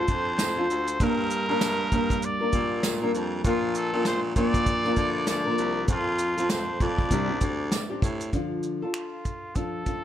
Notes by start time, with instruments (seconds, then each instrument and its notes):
Already playing: nylon-string guitar D4 F4 A4, trumpet C5
0.08 baritone saxophone F2, kick, shaker
0.38 snare, tambourine, shaker
0.56 nylon-string guitar D4 F4 A4
0.69 baritone saxophone D2, shaker
0.88 shaker
1.00 baritone saxophone G2, nylon-string guitar G3 A#3 D4 A#4, trumpet A#4, kick, shaker
1.30 shaker
1.48 baritone saxophone G2, nylon-string guitar G3 A#3 D4 A#4
1.61 snare, tambourine, shaker
1.92 baritone saxophone G2, nylon-string guitar G3 A#3 D4 A#4, kick, shaker
2.10 kick, shaker
2.22 trumpet D5, shaker
2.41 nylon-string guitar G3 A#3 D4 A#4
2.53 baritone saxophone A#2, kick, shaker
2.83 snare, tambourine, shaker
3.02 nylon-string guitar G3 A#3 D4 A#4
3.14 baritone saxophone F2, shaker
3.44 baritone saxophone A#2, nylon-string guitar F3 A#3 D4 A#4, trumpet F4, kick, shaker
3.75 trumpet A4, shaker
3.93 baritone saxophone A#2, nylon-string guitar F3 A#3 D4 A#4
4.05 trumpet C5, snare, tambourine, shaker
4.36 baritone saxophone A#2, nylon-string guitar F3 A#3 D4 A#4, trumpet D5, kick, shaker
4.54 kick, shaker
4.66 kick, shaker
4.84 nylon-string guitar F3 A#3 D4 A#4, snare
4.96 baritone saxophone D3, kick, shaker
5.27 trumpet D5, snare, tambourine, shaker
5.45 nylon-string guitar F3 A#3 D4 A#4
5.58 baritone saxophone C2, shaker
5.88 baritone saxophone F2, nylon-string guitar F3 C4 F4 A4, trumpet F4, kick, shaker
6.19 shaker
6.37 baritone saxophone F2, nylon-string guitar C4 F4 A4, shaker
6.49 trumpet C5, snare, tambourine, shaker
6.80 baritone saxophone F2, nylon-string guitar F3 C4 F4 A4, trumpet D5, kick, shaker
6.98 kick
7.11 baritone saxophone C2, nylon-string guitar C3 G3 C4 D4 G4, kick, shaker
7.29 nylon-string guitar C4 D4 G4
7.41 baritone saxophone D2, kick, shaker
7.71 snare, tambourine, shaker
7.90 nylon-string guitar C4 D4 G4
8.02 baritone saxophone A2, kick, shaker
8.21 shaker
8.33 nylon-string guitar D3 F3 D4 F4 A4, kick, shaker
8.63 shaker
8.82 nylon-string guitar D4 F4 A4
8.94 trumpet F4, finger snap, shaker
9.25 kick, shaker
9.55 nylon-string guitar F3 D4 F4 A4, trumpet A4, kick, shaker
9.86 nylon-string guitar F3 D4 F4 A4, kick, shaker